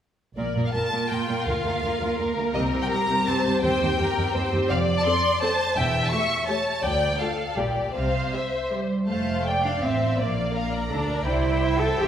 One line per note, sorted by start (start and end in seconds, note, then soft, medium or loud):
0.37 0.54 A#1 soft
0.37 0.44 A#2 soft
0.37 0.55 A#3 soft
0.37 0.55 A#4 soft
0.37 0.62 D5 soft
0.56 0.63 A#2 soft
0.56 0.73 A#3 soft
0.56 0.73 A#4 soft
0.65 0.69 F5 soft
0.72 0.81 A#2 soft
0.72 0.92 A#3 soft
0.72 2.15 F4 soft
0.72 0.92 A#4 soft
0.72 1.09 A5 medium
0.92 1.00 A#2 soft
0.92 1.10 A#3 soft
0.92 1.10 A#4 soft
1.10 1.17 A#2 soft
1.10 1.28 A#3 soft
1.10 1.28 A#4 soft
1.10 1.46 G5 soft
1.28 1.36 A#2 soft
1.28 1.46 A#3 soft
1.28 1.46 A#4 soft
1.46 1.54 D2 soft
1.46 1.63 D2 soft
1.46 1.64 A#3 soft
1.46 1.64 A#4 soft
1.46 2.37 F5 medium
1.64 1.72 D2 soft
1.64 1.82 A#3 soft
1.64 1.82 A#4 soft
1.83 1.90 D2 soft
1.83 2.00 A#3 soft
1.83 2.00 A#4 soft
2.00 2.08 D2 soft
2.00 2.17 A#3 soft
2.00 2.17 A#4 soft
2.18 2.26 D2 soft
2.18 2.35 A#3 soft
2.18 3.27 A#4 soft
2.18 2.36 A#4 soft
2.37 2.44 D2 soft
2.37 2.55 A#3 soft
2.37 2.55 A#4 soft
2.54 2.72 C2 soft
2.54 2.62 C2 soft
2.54 2.72 C4 soft
2.54 2.72 G4 soft
2.54 2.62 D#5 medium
2.73 2.80 C2 soft
2.73 2.90 C4 soft
2.73 2.90 G4 soft
2.82 2.86 G5 medium
2.90 2.98 C2 soft
2.90 3.08 C4 soft
2.90 3.08 G4 soft
2.90 3.26 A#5 medium
3.09 3.16 C2 soft
3.09 3.26 C4 soft
3.09 3.26 G4 soft
3.26 3.34 C2 soft
3.26 3.44 C4 soft
3.26 3.44 G4 soft
3.26 3.62 C5 soft
3.26 3.63 A5 medium
3.45 3.52 C2 soft
3.45 3.62 C4 soft
3.45 3.62 G4 soft
3.63 3.70 D#2 medium
3.63 3.80 D#2 medium
3.63 3.81 C4 soft
3.63 3.81 G4 soft
3.63 3.98 C5 medium
3.63 4.50 G5 medium
3.81 3.89 D#2 medium
3.81 3.98 C4 soft
3.81 3.98 G4 soft
3.99 4.06 D#2 soft
3.99 4.16 C4 soft
3.99 4.16 G4 soft
3.99 4.34 A#4 medium
4.17 4.24 D#2 soft
4.17 4.34 C4 soft
4.17 4.34 G4 soft
4.34 4.42 D#2 medium
4.34 4.52 C4 soft
4.34 4.52 G4 soft
4.34 4.70 C5 medium
4.52 4.59 D#2 soft
4.52 4.70 C4 soft
4.52 4.70 G4 soft
4.70 4.98 F1 medium
4.70 5.00 F2 medium
4.70 5.41 D5 medium
4.70 4.78 F5 medium
4.97 5.06 A5 medium
5.05 5.14 C4 soft
5.05 5.14 A4 soft
5.05 5.40 C6 medium
5.40 5.50 C4 soft
5.40 5.50 A4 soft
5.40 5.77 C5 medium
5.40 5.76 A5 medium
5.77 6.05 E1 medium
5.77 6.06 E2 medium
5.77 6.46 E5 medium
5.77 6.04 G5 medium
6.05 6.13 A5 medium
6.11 6.20 A3 soft
6.11 6.20 G4 soft
6.11 6.46 C#6 medium
6.47 6.56 A3 soft
6.47 6.56 G4 soft
6.47 6.82 C#5 soft
6.47 6.83 A5 medium
6.83 7.14 D2 soft
6.83 7.12 D2 soft
6.83 7.20 D5 medium
6.83 7.20 G5 medium
7.20 7.28 A3 soft
7.20 7.28 F4 soft
7.20 7.56 A4 soft
7.20 7.57 F5 soft
7.56 7.87 A#1 soft
7.56 7.88 A#2 soft
7.56 7.65 G3 soft
7.56 7.95 G4 soft
7.56 7.65 G4 soft
7.56 7.94 D5 soft
7.94 8.25 C2 soft
7.94 8.27 C3 soft
7.94 8.88 C5 soft
7.94 8.32 F5 medium
8.32 8.41 G3 soft
8.32 8.41 G4 soft
8.32 8.70 E5 soft
8.71 9.06 G3 soft
8.71 8.79 G3 soft
8.71 8.79 G4 soft
9.08 9.79 F1 soft
9.08 9.64 A3 medium
9.08 9.44 C5 soft
9.08 9.44 F5 soft
9.08 9.43 A5 soft
9.45 9.83 D5 soft
9.45 9.82 G5 soft
9.45 9.64 G5 soft
9.64 9.71 D4 medium
9.64 9.83 F5 soft
9.82 10.19 A1 soft
9.82 10.18 C4 soft
9.82 10.00 C5 soft
9.82 10.19 E5 soft
9.82 10.17 F5 soft
10.01 10.19 C5 soft
10.18 10.89 A#1 soft
10.18 10.73 A#3 soft
10.18 10.55 D5 soft
10.18 10.36 D5 soft
10.18 10.54 F5 soft
10.37 10.55 D5 soft
10.54 10.90 A#4 soft
10.54 10.73 F5 soft
10.54 11.26 A#5 soft
10.72 11.61 D5 soft
10.90 11.26 D2 soft
10.90 11.24 D4 soft
10.90 11.08 A4 soft
11.08 11.26 A#4 soft
11.25 11.96 C2 soft
11.25 11.79 E4 medium
11.25 11.96 C5 soft
11.25 11.42 G5 soft
11.43 12.08 G5 soft
11.62 11.79 E5 soft
11.80 11.98 A4 medium
11.80 12.08 E5 soft
11.97 12.08 E1 soft
11.97 12.08 G4 medium
11.97 12.04 C5 soft